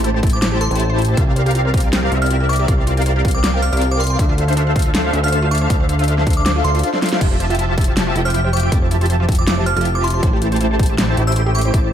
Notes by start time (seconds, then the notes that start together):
Already playing: A1 A3 E4 G4 C5 A5
0.04 E4, closed hi-hat
0.14 C5
0.23 E4, kick, closed hi-hat
0.27 closed hi-hat
0.30 G5 D6, closed hi-hat
0.42 C5 D6, snare, closed hi-hat
0.52 G4
0.61 A4 C6, closed hi-hat
0.71 A1 A3 E4 G4 C5 A5, closed hi-hat
0.75 E4, closed hi-hat
0.80 closed hi-hat
0.90 C5
0.98 E4, closed hi-hat
1.02 closed hi-hat
1.05 G4, closed hi-hat
1.17 C2 C4 F4 G4 A#4 D5 F5, kick, closed hi-hat
1.27 G5
1.36 C5, closed hi-hat
1.46 G4, closed hi-hat
1.51 F4, closed hi-hat
1.55 closed hi-hat
1.65 C5
1.74 F4, kick, closed hi-hat
1.77 closed hi-hat
1.80 G5, closed hi-hat
1.93 C5, snare, closed hi-hat
2.03 G4
2.11 C2 C4 F4 G4 A#4 D5 E5, closed hi-hat
2.22 C5 F6, closed hi-hat
2.26 closed hi-hat
2.30 F4, closed hi-hat
2.40 G5
2.49 C5 D6, closed hi-hat
2.53 closed hi-hat
2.56 G4, closed hi-hat
2.68 C2 C4 F4 G4 A#4 D5 F5, kick, closed hi-hat
2.78 C5
2.87 F4, closed hi-hat
2.97 G5, closed hi-hat
3.02 closed hi-hat
3.06 C5, closed hi-hat
3.16 G4
3.25 F4, kick, closed hi-hat
3.28 closed hi-hat
3.31 C5 D6, closed hi-hat
3.43 F4 D6, snare, closed hi-hat
3.54 G5
3.62 C5 F6, closed hi-hat
3.72 C2 C4 G4 A#4 D5 F5 F6, closed hi-hat
3.77 closed hi-hat
3.81 F4, closed hi-hat
3.91 C5 D6
4.00 F4 C6, closed hi-hat
4.04 closed hi-hat
4.07 G5 C6, closed hi-hat
4.19 D2 D4 A4 C5 E5 F5, kick, closed hi-hat
4.29 F4
4.38 D4, closed hi-hat
4.48 C5, closed hi-hat
4.53 closed hi-hat
4.57 D4, closed hi-hat
4.67 F5
4.76 C5, kick, closed hi-hat
4.79 closed hi-hat
4.82 F4, closed hi-hat
4.94 D4, snare, closed hi-hat
5.04 C5
5.13 D2 D4 A4 C5 E5 F5, closed hi-hat
5.23 F5 F6, closed hi-hat
5.28 C5, closed hi-hat
5.33 closed hi-hat
5.42 F4
5.51 D4 D6, closed hi-hat
5.55 closed hi-hat
5.58 C5, closed hi-hat
5.70 D2 D4 A4 C5 E5 F5, kick, closed hi-hat
5.80 F5
5.89 C5, closed hi-hat
5.99 F4, closed hi-hat
6.04 closed hi-hat
6.08 D4, closed hi-hat
6.18 C5, snare
6.26 D4, kick, closed hi-hat
6.30 closed hi-hat
6.33 F5 D6, closed hi-hat
6.45 C5 D6, snare, closed hi-hat
6.56 F4
6.64 D2 D4 A4 C5 E5 F5 C6, closed hi-hat
6.75 F4, closed hi-hat
6.79 closed hi-hat
6.83 F4, closed hi-hat
6.94 D5, snare
7.02 F4, snare, closed hi-hat
7.06 closed hi-hat
7.09 F4, snare, closed hi-hat
7.21 F1 F3 E4 F4 G4 E5 A5, kick, closed hi-hat, crash
7.31 C5
7.40 C5, closed hi-hat
7.50 F4, closed hi-hat
7.55 E4, closed hi-hat
7.59 closed hi-hat
7.69 C5
7.78 E4, kick, closed hi-hat
7.81 closed hi-hat
7.84 C5, closed hi-hat
7.97 C5, snare, closed hi-hat
8.07 F4
8.15 F1 F3 E4 F4 G4 E5 G5, closed hi-hat
8.25 C5 F6, closed hi-hat
8.30 E4, closed hi-hat
8.34 closed hi-hat
8.44 C5
8.53 C5 D6, closed hi-hat
8.57 closed hi-hat
8.60 F4, closed hi-hat
8.72 F1 F3 E4 F4 G4 E5 A5, kick, closed hi-hat
8.82 C5
8.91 E4, closed hi-hat
9.01 C5, closed hi-hat
9.06 closed hi-hat
9.10 C5, closed hi-hat
9.20 F4
9.29 E4, kick, closed hi-hat
9.32 closed hi-hat
9.35 C5 D6, closed hi-hat
9.47 E4 D6, snare, closed hi-hat
9.57 C5
9.66 C5 F6, closed hi-hat
9.76 F1 F3 F4 G4 E5 A5 F6, closed hi-hat
9.81 closed hi-hat
9.85 E4, closed hi-hat
9.95 C5 D6
10.04 E4 C6, closed hi-hat
10.08 closed hi-hat
10.10 C5 C6, closed hi-hat
10.23 A1 A3 E4 G4 C5 A5, kick, closed hi-hat
10.33 G4
10.42 E4, closed hi-hat
10.52 C5, closed hi-hat
10.56 closed hi-hat
10.61 E4, closed hi-hat
10.71 C5
10.79 C5, kick, closed hi-hat
10.83 closed hi-hat
10.86 G4, closed hi-hat
10.98 E4, snare, closed hi-hat
11.08 C5
11.17 A1 A3 E4 G4 C5 G5, closed hi-hat
11.27 C5 E6, closed hi-hat
11.32 closed hi-hat
11.36 C5, closed hi-hat
11.46 G4
11.55 E4 D6, closed hi-hat
11.59 closed hi-hat
11.61 C5, closed hi-hat
11.74 A1 A3 E4 G4 C5 A5, kick, closed hi-hat
11.84 C5